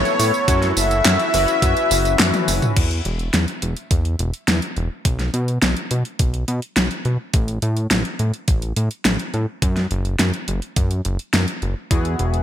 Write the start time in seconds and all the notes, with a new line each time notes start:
Already playing: A3 B3 E4 A4 B4 C#5 E5
0.05 closed hi-hat, tambourine
0.19 A2, open hi-hat, tambourine
0.34 tambourine
0.48 F#2 C#4 E4 F#4 A4, kick, closed hi-hat, tambourine
0.62 snare, closed hi-hat, tambourine
0.77 F#1 E5, open hi-hat, tambourine
0.91 closed hi-hat, tambourine
1.05 F#2, snare, clap, closed hi-hat, tambourine
1.19 closed hi-hat, tambourine
1.34 F#1 C#4 E4 F#4 B4, open hi-hat, tambourine
1.48 closed hi-hat, tambourine
1.62 F#2, kick, closed hi-hat, tambourine
1.77 closed hi-hat, tambourine
1.91 F#1, open hi-hat, tambourine
2.05 closed hi-hat, tambourine
2.19 F#2, snare, clap, closed hi-hat, high tom, tambourine
2.34 closed hi-hat, high tom, tambourine
2.48 F#1, open hi-hat, tambourine
2.62 closed hi-hat, mid tom, tambourine
2.77 E2, kick, closed hi-hat, crash
2.91 closed hi-hat
3.05 E1, closed hi-hat
3.19 closed hi-hat
3.34 E2, snare, closed hi-hat
3.48 closed hi-hat
3.62 E1, closed hi-hat
3.77 closed hi-hat
3.91 E2, kick, closed hi-hat
4.05 closed hi-hat
4.19 E1, closed hi-hat
4.34 closed hi-hat
4.48 E2, snare, closed hi-hat
4.62 closed hi-hat
4.77 E1, closed hi-hat
5.05 B1, kick, closed hi-hat
5.19 snare, closed hi-hat
5.34 B2, closed hi-hat
5.48 closed hi-hat
5.62 B1, snare, closed hi-hat
5.77 closed hi-hat
5.91 B2, closed hi-hat
6.05 closed hi-hat
6.19 B1, kick, closed hi-hat
6.34 closed hi-hat
6.48 B2, closed hi-hat
6.62 closed hi-hat
6.77 B1, snare, closed hi-hat
6.91 closed hi-hat
7.05 B2, closed hi-hat
7.34 A1, kick, closed hi-hat
7.48 closed hi-hat
7.62 A2, closed hi-hat
7.77 closed hi-hat
7.91 A1, snare, closed hi-hat
8.05 closed hi-hat
8.19 A2, closed hi-hat
8.34 closed hi-hat
8.48 A1, kick, closed hi-hat
8.62 closed hi-hat
8.76 A2, closed hi-hat
8.91 closed hi-hat
9.05 A1, snare, closed hi-hat
9.20 closed hi-hat
9.34 A2, closed hi-hat
9.62 F#2, kick, closed hi-hat
9.77 snare, closed hi-hat
9.91 F#1, closed hi-hat
10.05 closed hi-hat
10.19 F#2, snare, closed hi-hat
10.34 closed hi-hat
10.48 F#1, closed hi-hat
10.62 closed hi-hat
10.76 F#2, kick, closed hi-hat
10.91 closed hi-hat
11.05 F#1, closed hi-hat
11.19 closed hi-hat
11.34 F#2, snare, closed hi-hat
11.48 closed hi-hat
11.62 F#1, closed hi-hat
11.91 E2 B3 E4 F#4 G#4 E5 F#5 B5, kick, closed hi-hat
12.05 closed hi-hat
12.19 E1, closed hi-hat
12.34 closed hi-hat